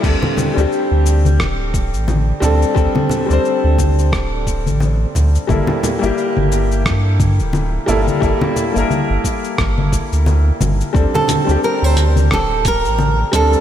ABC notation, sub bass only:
X:1
M:4/4
L:1/16
Q:"Swing 16ths" 1/4=88
K:Dm
V:1 name="Sub bass" clef=bass
D,, z2 D,, z D,,3 D,,,3 A,,,2 z D,, z | D,, z2 D,, z D,,3 D,,,3 A,,,2 z D,, z | G,,, z2 G,,, z G,,,3 G,,3 D,,,2 z G,,, z | G,,, z2 G,,, z G,,, z2 G,,,2 z D,,2 z G,,, z |
D,, z2 D,, z D,,3 D,,,3 A,,,2 z D,, z |]